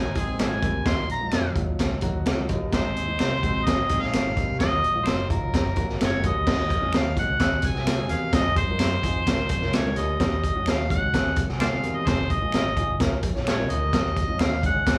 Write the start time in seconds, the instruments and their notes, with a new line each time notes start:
Already playing: fingered electric bass G#1, horn section D#4 F#4 A#4, harmonica G#5
0.14 upright piano G#3 C4 D#4, horn section C4 D#4 G#4, kick, closed hi-hat, muted conga
0.28 fingered electric bass A#1
0.38 fingered electric bass G#1, baritone saxophone F2, harmonica G#5, finger snap, snare, closed hi-hat, muted conga, high conga
0.50 upright piano G#3 C4 F4, high conga
0.62 fingered electric bass D2, baritone saxophone D#2, kick, closed hi-hat, muted conga, low conga
0.84 baritone saxophone D#2, fingered electric bass D#2, upright piano F#3 D#4 F4, harmonica C6, kick, snare, closed hi-hat, muted conga
1.08 fingered electric bass A#1, harmonica A#5, closed hi-hat
1.21 upright piano F#3 D#4 F4, high conga
1.32 fingered electric bass F2, finger snap, snare, closed hi-hat
1.55 fingered electric bass D#2, upright piano F#3 D#4 F4, kick, closed hi-hat, muted conga
1.66 low conga
1.79 fingered electric bass C#2, kick, snare, closed hi-hat, muted conga
2.01 fingered electric bass D#2, upright piano F#3 D#4 F#4 A#5, kick, closed hi-hat
2.26 fingered electric bass C#2, baritone saxophone F2, upright piano F#5, finger snap, snare, closed hi-hat, high conga
2.37 upright piano F#3 D#4 F4, high conga
2.49 fingered electric bass G1, baritone saxophone D#2, upright piano D#5, kick, closed hi-hat, muted conga, low conga
2.71 fingered electric bass G#1, baritone saxophone G#2, upright piano G#3 C4 D#4, harmonica C5, kick, snare, closed hi-hat, muted conga
2.96 fingered electric bass D#2, horn section C4 D#4 G#4, closed hi-hat
3.07 upright piano G#3 C4 D#4, high conga
3.19 fingered electric bass C2, horn section D#4 G#4 C5, finger snap, snare, closed hi-hat
3.42 upright piano G#3 C4 F#4, kick, closed hi-hat, muted conga, high conga
3.54 fingered electric bass A#1, low conga
3.64 fingered electric bass G#1, horn section C4 D#4 G#4, harmonica D#5, kick, snare, closed hi-hat
3.89 fingered electric bass A#1, upright piano G#3 C4 D#4, horn section C4 D#4 G#4, kick, closed hi-hat
4.00 harmonica F5, snare
4.13 fingered electric bass G#1, baritone saxophone F2, finger snap, snare, closed hi-hat, high conga
4.25 upright piano G#3 C4 D#4, high conga
4.37 baritone saxophone D#2, kick, closed hi-hat, muted conga, low conga
4.50 fingered electric bass C2
4.59 baritone saxophone D#2, fingered electric bass D#2, upright piano F#3 D#4 F4, harmonica D#5, kick, snare, closed hi-hat, muted conga
4.84 fingered electric bass A#1, closed hi-hat
4.95 upright piano F#3 D#4 F4, high conga
5.05 fingered electric bass F#1, harmonica C5, finger snap, snare, closed hi-hat
5.30 upright piano F#3 D#4 F4, harmonica A#4, kick, closed hi-hat
5.41 fingered electric bass F1, low conga
5.54 fingered electric bass F#1, kick, snare, closed hi-hat
5.76 fingered electric bass G#1, upright piano A#3 C#4 F#4, kick, closed hi-hat
5.89 snare
6.00 fingered electric bass F#1, baritone saxophone F2, harmonica C#5, finger snap, snare, closed hi-hat, high conga
6.11 upright piano A#3 C#4 F#4, high conga
6.23 fingered electric bass D2, baritone saxophone D#2, harmonica D#5, kick, closed hi-hat, muted conga, low conga
6.46 baritone saxophone D#2, fingered electric bass D#2, upright piano C#4 D#4 F#4, kick, snare, crash
6.70 kick, closed hi-hat
6.82 fingered electric bass F2, upright piano C#4 D#4 G#4, high conga
6.93 fingered electric bass D#2, finger snap, snare, closed hi-hat, muted conga
6.97 harmonica F5
7.16 upright piano C#4 D#4 F#4, harmonica F#5, kick, closed hi-hat, high conga
7.29 fingered electric bass C#2, low conga
7.39 fingered electric bass D#2, upright piano C4 F#4 G#4, kick, snare, closed hi-hat
7.62 fingered electric bass C2, kick, closed hi-hat, muted conga
7.66 harmonica G#5
7.74 fingered electric bass C2, upright piano C4 F#4 G#4, snare
7.86 baritone saxophone F2, finger snap, snare, closed hi-hat, high conga
7.99 upright piano C4 F#4 G#4, high conga
8.09 baritone saxophone D#2, fingered electric bass E2, harmonica F5, closed hi-hat, muted conga, low conga
8.32 baritone saxophone F2, fingered electric bass F2, upright piano D#4 F4 G#4, harmonica D#5, kick, snare, closed hi-hat
8.56 harmonica C5, kick, closed hi-hat, muted conga
8.68 fingered electric bass F#2, upright piano D#4 F4 A#4, high conga
8.79 finger snap, snare, closed hi-hat
9.03 fingered electric bass F2, upright piano D#4 F4 G#4, kick, closed hi-hat
9.15 low conga
9.27 fingered electric bass C#2, upright piano C#4 F4 A#4, kick, snare, closed hi-hat, muted conga
9.49 fingered electric bass F2, kick, closed hi-hat
9.62 fingered electric bass C#2, upright piano C#4 F4 A#4, snare
9.73 baritone saxophone F2, harmonica C#5, finger snap, snare, closed hi-hat, muted conga, high conga
9.86 upright piano C#4 F4 A#4, high conga
9.96 fingered electric bass D2, baritone saxophone D#2, harmonica D#5, closed hi-hat, muted conga, low conga
10.18 baritone saxophone D#2, fingered electric bass D#2, upright piano C#4 D#4 F#4, kick, snare, closed hi-hat, muted conga
10.44 kick, closed hi-hat, muted conga
10.55 fingered electric bass F2, upright piano C#4 D#4 F#4, high conga
10.66 fingered electric bass D#2, harmonica F5, finger snap, snare, closed hi-hat, muted conga
10.89 upright piano C#4 D#4 F#4, harmonica F#5, kick, closed hi-hat, high conga
11.01 fingered electric bass C#2, low conga
11.14 fingered electric bass D#2, upright piano C4 F#4 G#4, kick, snare, closed hi-hat
11.36 fingered electric bass C2, kick, closed hi-hat, muted conga
11.49 fingered electric bass C2, upright piano C4 F#4 G#4, snare
11.60 baritone saxophone F2, harmonica C5 D5 F5, finger snap, snare, closed hi-hat, muted conga, high conga
11.72 upright piano C4 F#4 G#4, high conga
11.83 baritone saxophone D#2, fingered electric bass E2, closed hi-hat, low conga
11.96 harmonica D#5
12.06 fingered electric bass F1, baritone saxophone F2, upright piano D#4 F4 G#4, harmonica C5, kick, snare, closed hi-hat, low conga
12.30 harmonica D#5, kick, closed hi-hat, muted conga
12.42 fingered electric bass A#1, upright piano D#4 F4 G#4, high conga
12.52 fingered electric bass G#1, finger snap, snare, closed hi-hat, muted conga
12.76 upright piano D#4 F4 G#4, kick, closed hi-hat
12.88 fingered electric bass F#1, low conga
12.99 fingered electric bass C#2, upright piano C#4 F4 A#4, kick, snare, closed hi-hat, muted conga
13.22 fingered electric bass A#1, kick, closed hi-hat, muted conga
13.34 fingered electric bass A#1, upright piano C#4 F4 C#5, snare
13.46 baritone saxophone F2, harmonica C#5, finger snap, snare, closed hi-hat, muted conga, high conga
13.58 upright piano C#4 F4 A#4, high conga
13.69 fingered electric bass D2, baritone saxophone D#2, harmonica D#5, closed hi-hat, muted conga, low conga
13.92 baritone saxophone D#2, fingered electric bass D#2, upright piano C#4 D#4 F#4, kick, snare, closed hi-hat, muted conga
14.16 kick, closed hi-hat
14.28 fingered electric bass F2, upright piano C#4 D#4 F4, high conga
14.39 fingered electric bass D#2, harmonica F5, finger snap, snare, closed hi-hat, muted conga
14.62 upright piano C#4 D#4 G#4, harmonica F#5, kick, closed hi-hat, muted conga, high conga
14.74 fingered electric bass C#2, low conga
14.86 fingered electric bass D#2, upright piano C4 F#4 G#4, kick, snare, closed hi-hat